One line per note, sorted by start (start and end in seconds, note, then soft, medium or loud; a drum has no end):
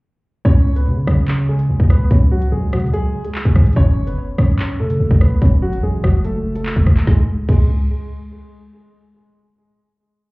0.45 0.88 C#2 loud
0.45 0.75 C#4 medium
0.45 0.74 C#5 loud
0.45 kick loud
0.45 closed hi-hat medium
0.76 0.86 B3 medium
0.76 0.85 B4 medium
0.76 closed hi-hat medium
0.87 1.06 C#3 loud
1.07 1.67 C#3 loud
1.07 1.47 C#4 medium
1.07 1.46 C#5 medium
1.07 kick medium
1.07 cross-stick loud
1.07 closed hi-hat medium
1.28 clap loud
1.28 closed hi-hat medium
1.49 1.88 G#3 medium
1.49 1.88 G#4 medium
1.59 closed hi-hat medium
1.69 1.79 C#2 loud
1.80 1.89 C#2 loud
1.80 kick loud
1.90 2.10 C#2 loud
1.90 2.09 B3 medium
1.90 2.09 B4 medium
1.90 cross-stick medium
1.90 closed hi-hat medium
2.11 2.51 C#2 loud
2.11 2.30 C#4 medium
2.11 2.29 C#5 medium
2.11 kick loud
2.11 closed hi-hat medium
2.31 2.50 F#3 medium
2.31 2.50 F#4 medium
2.42 closed hi-hat medium
2.52 2.74 C#2 loud
2.52 2.71 G#3 medium
2.52 2.70 G#4 medium
2.73 2.90 C#3 loud
2.73 2.92 F#3 medium
2.73 2.91 F#4 medium
2.73 cross-stick loud
2.73 closed hi-hat medium
2.80 closed hi-hat medium
2.87 3.03 C#2 loud
2.87 closed hi-hat medium
2.93 3.23 G#3 medium
2.93 3.23 G#4 loud
2.93 closed hi-hat medium
3.25 3.74 G#3 medium
3.25 3.73 G#4 medium
3.25 closed hi-hat medium
3.35 clap loud
3.45 3.55 C#2 loud
3.45 kick loud
3.45 closed hi-hat medium
3.56 3.76 G#2 loud
3.56 kick medium
3.56 cross-stick medium
3.56 closed hi-hat medium
3.66 closed hi-hat medium
3.73 3.98 F#1 loud
3.73 4.06 C#5 loud
3.73 kick loud
3.73 closed hi-hat medium
3.77 4.06 C#4 medium
3.77 closed hi-hat medium
3.97 4.09 G#1 loud
4.07 4.17 F#1 loud
4.07 4.17 B3 medium
4.07 4.16 B4 medium
4.07 closed hi-hat medium
4.38 4.81 F#2 loud
4.38 4.78 C#4 medium
4.38 4.77 C#5 medium
4.38 kick medium
4.38 cross-stick loud
4.38 closed hi-hat medium
4.59 clap loud
4.59 closed hi-hat medium
4.80 4.99 C#3 loud
4.80 5.19 A3 medium
4.80 5.19 A4 medium
4.90 closed hi-hat medium
5.00 5.10 C#2 loud
5.11 5.20 F#1 loud
5.11 kick loud
5.21 5.41 C#2 loud
5.21 5.40 B3 medium
5.21 5.40 B4 medium
5.21 cross-stick medium
5.21 closed hi-hat medium
5.42 5.74 F#1 loud
5.42 5.61 C#4 medium
5.42 5.60 C#5 medium
5.42 kick loud
5.42 closed hi-hat medium
5.62 5.81 F#3 medium
5.62 5.81 F#4 medium
5.73 5.83 A1 loud
5.73 closed hi-hat medium
5.83 6.03 A1 loud
5.83 6.02 G#3 medium
5.83 6.01 G#4 medium
6.03 6.73 F#1 loud
6.03 6.22 F#3 medium
6.03 6.22 F#4 medium
6.03 kick medium
6.03 cross-stick loud
6.03 closed hi-hat medium
6.24 6.54 A3 medium
6.24 6.54 A4 medium
6.24 closed hi-hat medium
6.55 7.05 A3 medium
6.55 7.04 A4 medium
6.55 closed hi-hat medium
6.66 clap loud
6.76 6.86 F#1 loud
6.76 kick loud
6.76 closed hi-hat medium
6.87 7.07 F#1 loud
6.87 kick medium
6.87 cross-stick medium
6.87 closed hi-hat medium
6.97 clap medium
6.97 closed hi-hat medium
7.07 7.19 C#2 loud
7.07 7.19 G#3 medium
7.07 kick loud
7.07 snare medium
7.49 7.87 C#2 loud
7.49 7.68 G#3 medium
7.49 kick loud
7.49 crash medium